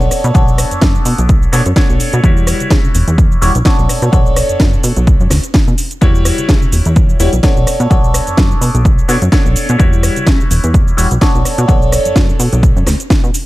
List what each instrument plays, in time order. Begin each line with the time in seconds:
Already playing: grand piano B3 D4 A4 C#5
0.00 analog synth bass B1, cabasa
0.11 analog synth bass B2, cross-stick, open hi-hat, cabasa
0.24 analog synth bass B2, closed hi-hat, cabasa
0.34 analog synth bass B1, grand piano B3 D4 A4 C#5, kick, closed hi-hat, cabasa
0.48 cabasa
0.58 cross-stick, open hi-hat, cabasa
0.71 analog synth bass F#2, closed hi-hat, cabasa
0.82 analog synth bass F#2, kick, snare, closed hi-hat, cabasa
0.95 cabasa
1.05 analog synth bass B2, open hi-hat, cabasa
1.18 analog synth bass B1, closed hi-hat, cabasa
1.29 kick, closed hi-hat, cabasa
1.43 cabasa
1.52 analog synth bass B2, grand piano B3 D4 A4 C#5, cross-stick, open hi-hat, cabasa
1.66 analog synth bass F#2, closed hi-hat, cabasa
1.76 grand piano B3 D4 A4 C#5, kick, snare, closed hi-hat, cabasa
1.90 analog synth bass B1, cabasa
2.00 open hi-hat, cabasa
2.13 analog synth bass B2, closed hi-hat, cabasa
2.23 analog synth bass E2, grand piano G3 E4 F#4 C#5, kick, closed hi-hat, cabasa
2.37 cabasa
2.47 cross-stick, open hi-hat, cabasa
2.60 analog synth bass C#3, closed hi-hat, cabasa
2.71 analog synth bass C#3, kick, snare, closed hi-hat, cabasa
2.84 cabasa
2.95 analog synth bass E1, open hi-hat, cabasa
3.08 analog synth bass E2, closed hi-hat, cabasa
3.18 kick, closed hi-hat, cabasa
3.32 cabasa
3.41 analog synth bass E1, grand piano G3 E4 F#4 C#5, open hi-hat, cabasa
3.55 analog synth bass B1, closed hi-hat, cabasa
3.65 grand piano B3 D4 A4 C#5, kick, snare, closed hi-hat, cabasa
3.79 analog synth bass B1, cabasa
3.89 analog synth bass B2, cross-stick, open hi-hat, cabasa
4.02 analog synth bass B2, closed hi-hat, cabasa
4.12 analog synth bass B1, grand piano B3 D4 A4 C#5, kick, closed hi-hat, cabasa
4.26 cabasa
4.36 cross-stick, open hi-hat, cabasa
4.49 analog synth bass F#2, closed hi-hat, cabasa
4.60 analog synth bass F#2, kick, snare, closed hi-hat, cabasa
4.73 cabasa
4.83 analog synth bass B2, open hi-hat, cabasa
4.96 analog synth bass B1, closed hi-hat, cabasa
5.07 kick, closed hi-hat, cabasa
5.20 analog synth bass F#2, cabasa
5.30 analog synth bass D2, cross-stick, snare, open hi-hat, cabasa
5.44 closed hi-hat, cabasa
5.54 kick, snare, closed hi-hat, cabasa
5.67 analog synth bass B2, cabasa
5.78 open hi-hat, cabasa
5.91 closed hi-hat, cabasa
6.01 analog synth bass E2, grand piano G3 E4 F#4 C#5, kick, closed hi-hat, cabasa
6.15 cabasa
6.25 cross-stick, open hi-hat, cabasa
6.38 analog synth bass C#3, closed hi-hat, cabasa
6.49 analog synth bass C#3, kick, snare, closed hi-hat, cabasa
6.62 cabasa
6.72 analog synth bass E1, open hi-hat, cabasa
6.85 analog synth bass E2, closed hi-hat, cabasa
6.96 kick, closed hi-hat, cabasa
7.09 cabasa
7.20 analog synth bass E1, grand piano G3 E4 F#4 C#5, open hi-hat, cabasa
7.33 analog synth bass B1, closed hi-hat, cabasa
7.43 grand piano B3 D4 A4 C#5, kick, snare, closed hi-hat, cabasa
7.56 analog synth bass B1, cabasa
7.67 cross-stick, open hi-hat, cabasa
7.80 analog synth bass B2, closed hi-hat, cabasa
7.90 analog synth bass B1, grand piano B3 D4 A4 C#5, kick, closed hi-hat, cabasa
8.04 cabasa
8.14 cross-stick, open hi-hat, cabasa
8.27 analog synth bass F#2, closed hi-hat, cabasa
8.37 analog synth bass F#2, kick, snare, closed hi-hat, cabasa
8.51 cabasa
8.61 analog synth bass B2, open hi-hat, cabasa
8.75 analog synth bass B1, closed hi-hat, cabasa
8.85 kick, closed hi-hat, cabasa
8.99 cabasa
9.08 analog synth bass B2, grand piano B3 D4 A4 C#5, cross-stick, open hi-hat, cabasa
9.22 analog synth bass F#2, closed hi-hat, cabasa
9.32 grand piano B3 D4 A4 C#5, kick, snare, closed hi-hat, cabasa
9.46 analog synth bass B1, cabasa
9.56 analog synth bass B2, open hi-hat, cabasa
9.69 analog synth bass B2, closed hi-hat, cabasa
9.79 analog synth bass E2, grand piano G3 E4 F#4 C#5, kick, closed hi-hat, cabasa
9.93 cabasa
10.03 cross-stick, open hi-hat, cabasa
10.16 analog synth bass C#3, closed hi-hat, cabasa
10.27 analog synth bass C#3, kick, snare, closed hi-hat, cabasa
10.40 cabasa
10.51 analog synth bass E1, open hi-hat, cabasa
10.64 analog synth bass E2, closed hi-hat, cabasa
10.74 kick, closed hi-hat, cabasa
10.88 cabasa
10.97 analog synth bass E1, grand piano G3 E4 F#4 C#5, open hi-hat, cabasa
11.11 analog synth bass B1, closed hi-hat, cabasa
11.21 grand piano B3 D4 A4 C#5, kick, snare, closed hi-hat, cabasa
11.35 analog synth bass B1, cabasa
11.45 analog synth bass B2, cross-stick, open hi-hat, cabasa
11.58 analog synth bass B2, closed hi-hat, cabasa
11.68 analog synth bass B1, grand piano B3 D4 A4 C#5, kick, closed hi-hat, cabasa
11.82 cabasa
11.92 cross-stick, open hi-hat, cabasa
12.05 analog synth bass F#2, closed hi-hat, cabasa
12.16 analog synth bass F#2, kick, snare, closed hi-hat, cabasa
12.29 cabasa
12.39 analog synth bass B2, open hi-hat, cabasa
12.53 analog synth bass B1, closed hi-hat, cabasa
12.63 kick, closed hi-hat, cabasa
12.76 analog synth bass F#2, cabasa
12.87 analog synth bass D2, cross-stick, snare, open hi-hat, cabasa
13.00 closed hi-hat, cabasa
13.10 kick, snare, closed hi-hat, cabasa
13.24 analog synth bass B2, cabasa
13.34 open hi-hat, cabasa